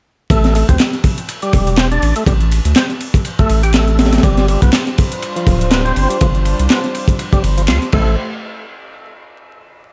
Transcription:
0.30 A1 A3, kick, closed hi-hat, ride
0.44 snare, closed hi-hat
0.55 A3, ride
0.69 D2 C4, kick, closed hi-hat
0.80 snare, clap, closed hi-hat, ride
0.93 snare, closed hi-hat
1.04 kick, ride
1.18 closed hi-hat
1.29 closed hi-hat, ride
1.42 G3, closed hi-hat
1.53 E1, kick, ride
1.67 closed hi-hat
1.77 C4, snare, clap, closed hi-hat, ride
1.92 D4, closed hi-hat
2.02 A1, ride
2.16 A3, closed hi-hat
2.26 A1 G3, kick, closed hi-hat, ride
2.40 closed hi-hat
2.51 ride
2.65 D2, closed hi-hat
2.76 C4, snare, clap, closed hi-hat, ride
2.89 snare, closed hi-hat
3.01 ride
3.14 kick, closed hi-hat
3.25 closed hi-hat, ride
3.39 A3, kick, closed hi-hat
3.49 A1, ride
3.63 G4, closed hi-hat
3.74 A3, snare, clap, closed hi-hat, ride
3.88 closed hi-hat
3.99 A3, snare, ride
4.06 snare, ride
4.12 snare, closed hi-hat, ride
4.18 snare, ride
4.23 G1 G3 D4 F4 C5, kick, closed hi-hat, ride
4.37 snare, closed hi-hat
4.48 G3, ride
4.62 C2 B3, kick, closed hi-hat
4.73 snare, clap, closed hi-hat, ride
4.87 snare, closed hi-hat
4.98 kick, ride
5.12 closed hi-hat
5.22 closed hi-hat, ride
5.36 F3, closed hi-hat
5.47 D1, kick, ride
5.61 closed hi-hat
5.71 B3, snare, clap, closed hi-hat, ride
5.85 C4, closed hi-hat
5.96 G1, ride
6.10 G3, closed hi-hat
6.21 G1 F3, kick, closed hi-hat, ride
6.35 closed hi-hat
6.45 ride
6.59 C2, closed hi-hat
6.70 B3, snare, clap, closed hi-hat, ride
6.84 snare, closed hi-hat
6.95 ride
7.08 kick, closed hi-hat
7.19 closed hi-hat, ride
7.33 G3, kick, closed hi-hat
7.44 G1, ride
7.58 F3, closed hi-hat
7.68 D2 F4, snare, clap, closed hi-hat, ride
7.82 snare, closed hi-hat
7.92 A1 A3 E4 G4 C5, kick, crash

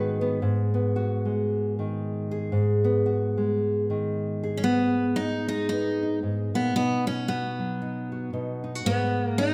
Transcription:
Already playing: G#2 D#3 G#3 B3 F#4 B4
0.21 B3
0.42 G#2
0.74 B3
0.96 F#4
1.25 G#3
1.79 D#3
2.31 G#4
2.52 G#2
2.84 B3
3.06 F#4
3.37 G#3
3.90 D#3
4.43 G#4
4.57 C#4
4.64 G#2 B3
5.16 D#4
5.48 G#3 D#4
5.69 B3 D#4
6.03 D#4
6.23 G#2
6.54 A#2 B3
6.76 B2 B3 D#4
7.07 C#4
7.28 B3 F#4
7.59 F#3
7.82 D#4
8.12 F#4
8.33 B2 D#4
8.64 D#4
8.75 F#4
8.85 G#2 B3
9.26 A#3
9.38 D#4

